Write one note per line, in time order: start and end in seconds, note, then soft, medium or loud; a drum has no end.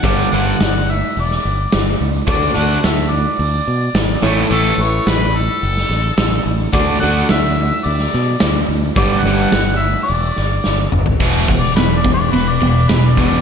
0.03 0.24 G1 loud
0.03 0.26 G2 medium
0.03 0.26 D3 loud
0.03 0.26 G3 loud
0.03 0.35 D5 medium
0.03 kick loud
0.03 open hi-hat medium
0.32 0.53 G1 medium
0.32 0.54 G2 loud
0.32 0.55 D3 loud
0.32 0.55 G3 loud
0.32 0.93 F#5 medium
0.60 1.01 G1 medium
0.60 snare loud
0.60 open hi-hat soft
0.91 1.17 E5 medium
1.17 1.37 E1 medium
1.17 1.98 D5 medium
1.17 open hi-hat soft
1.31 snare soft
1.45 1.65 G1 medium
1.72 1.94 G1 medium
1.72 snare loud
1.72 open hi-hat medium
2.01 2.21 C#2 medium
2.27 2.48 D2 loud
2.27 2.50 D3 loud
2.27 2.50 A3 loud
2.27 2.50 D4 loud
2.27 2.50 F#4 medium
2.27 2.50 A4 medium
2.27 2.50 D5 medium
2.27 2.57 D5 loud
2.27 kick loud
2.27 open hi-hat medium
2.55 2.77 D2 medium
2.55 2.77 D3 medium
2.55 2.78 A3 loud
2.55 2.78 D4 medium
2.55 3.45 F#4 medium
2.55 3.45 A4 medium
2.55 3.45 D5 medium
2.55 2.87 F#5 loud
2.84 3.25 D2 medium
2.84 3.11 E5 medium
2.84 snare medium
2.84 open hi-hat medium
3.10 4.22 D5 medium
3.39 3.60 D2 medium
3.39 open hi-hat soft
3.68 3.88 B2 medium
3.94 4.15 G#1 medium
3.94 snare loud
3.94 open hi-hat medium
4.22 4.43 A1 medium
4.22 4.45 A2 medium
4.22 4.46 E3 medium
4.22 4.46 A3 loud
4.22 4.68 E4 medium
4.22 4.67 A4 medium
4.22 4.67 C#5 loud
4.50 4.71 A1 loud
4.50 4.73 A2 medium
4.50 4.73 E3 loud
4.50 4.73 A3 loud
4.50 4.84 A4 loud
4.50 open hi-hat medium
4.78 4.99 A1 medium
4.78 5.68 E4 medium
4.78 5.68 A4 medium
4.78 5.68 B4 medium
4.83 5.10 C#5 loud
5.07 5.47 A1 loud
5.07 5.37 B4 loud
5.07 snare loud
5.07 open hi-hat medium
5.36 6.47 A4 medium
5.63 5.83 F#1 medium
5.63 open hi-hat soft
5.77 snare soft
5.90 6.10 A1 medium
5.90 snare soft
6.17 6.38 A1 medium
6.17 snare loud
6.17 open hi-hat medium
6.46 6.66 A1 medium
6.73 6.94 D2 loud
6.73 6.96 D3 loud
6.73 6.97 A3 loud
6.73 6.97 D4 loud
6.73 6.96 F#4 medium
6.73 6.96 A4 medium
6.73 7.00 D5 loud
6.73 6.96 D5 medium
6.73 kick loud
6.73 open hi-hat medium
7.00 7.23 D2 medium
7.00 7.25 D3 medium
7.00 7.25 A3 loud
7.00 7.25 D4 medium
7.00 7.91 F#4 medium
7.00 7.91 A4 medium
7.00 7.91 D5 medium
7.00 7.27 F#5 loud
7.29 7.71 D2 medium
7.29 7.87 E5 loud
7.29 snare loud
7.29 open hi-hat medium
7.84 8.06 D2 medium
7.84 8.70 D5 medium
7.84 open hi-hat medium
7.99 snare soft
8.13 8.35 B2 medium
8.13 snare soft
8.40 8.62 D2 medium
8.40 snare loud
8.40 open hi-hat medium
8.69 8.89 D2 medium
8.96 9.18 G1 loud
8.96 9.20 G2 medium
8.96 9.20 D3 loud
8.96 9.21 G3 loud
8.96 9.20 G4 medium
8.96 9.20 B4 medium
8.96 9.23 D5 loud
8.96 9.20 D5 medium
8.96 kick loud
8.96 open hi-hat medium
9.21 9.45 G1 medium
9.21 9.76 F#5 loud
9.25 9.48 G2 loud
9.25 9.48 D3 loud
9.25 9.49 G3 loud
9.25 10.15 G4 medium
9.25 10.15 B4 medium
9.25 10.15 D5 medium
9.52 9.94 G1 medium
9.52 snare loud
9.52 open hi-hat soft
9.76 10.02 E5 medium
10.03 10.86 D5 medium
10.08 10.30 E1 loud
10.08 open hi-hat soft
10.36 10.58 G1 medium
10.36 snare soft
10.64 10.87 G1 medium
10.64 snare medium
10.92 11.14 G1 medium
10.92 mid tom medium
11.06 floor tom medium
11.20 11.45 E1 medium
11.20 11.48 E2 loud
11.20 11.48 B2 medium
11.20 11.48 E3 loud
11.20 kick loud
11.20 crash loud
11.48 11.73 E1 medium
11.48 11.75 E2 medium
11.48 11.75 B2 medium
11.48 kick medium
11.48 ride medium
11.59 11.75 D5 medium
11.76 12.02 E1 loud
11.76 12.03 E2 medium
11.76 12.04 B2 medium
11.76 11.95 B4 medium
11.76 snare loud
11.76 ride medium
11.96 12.13 D5 medium
12.04 12.30 E1 medium
12.04 12.31 E2 medium
12.04 12.31 B2 medium
12.04 kick medium
12.04 ride medium
12.14 12.34 D5 medium
12.33 12.58 E1 medium
12.33 12.59 E2 medium
12.33 12.59 B2 medium
12.33 12.51 B4 loud
12.33 ride medium
12.49 12.69 D5 medium
12.61 12.86 E1 medium
12.61 12.87 E2 medium
12.61 12.87 B2 medium
12.61 ride medium
12.69 12.90 D5 medium
12.88 13.38 E1 medium
12.88 13.16 E2 medium
12.88 13.16 B2 medium
12.88 13.10 B4 medium
12.88 snare loud
12.88 ride medium
13.09 13.27 D5 medium
13.17 13.41 E2 medium
13.17 13.41 B2 medium
13.17 13.41 E3 medium
13.17 kick medium
13.17 ride medium
13.27 13.41 D5 medium